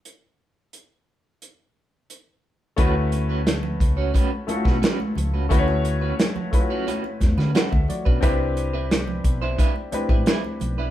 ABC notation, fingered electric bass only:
X:1
M:4/4
L:1/16
Q:1/4=88
K:D
V:1 name="Fingered electric bass" clef=bass
z16 | D,,6 C,,2 z3 B,,, z2 C,,2 | D,,4 z6 E,, D, z D,, z B,,, | =C,,6 B,,,2 z3 A,,, z2 B,,,2 |]